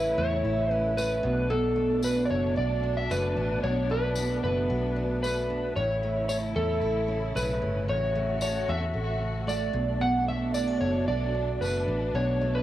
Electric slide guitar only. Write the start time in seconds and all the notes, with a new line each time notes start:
Already playing: B4
0.18 C#5
0.73 B4
0.97 B4
1.50 A4
2.04 B4
2.26 D5
2.31 C#5
2.57 D5
2.97 E5
3.11 B4
3.63 C#5
3.91 B4
4.44 B4
5.23 B4
5.76 C#5
6.29 C#5
6.56 A4
7.36 B4
7.89 C#5
8.42 C#5
8.69 E5
9.48 D5
10.01 F#5
10.28 E5
10.54 D5
10.81 C#5
11.08 D5
11.61 B4
12.15 C#5
12.55 B4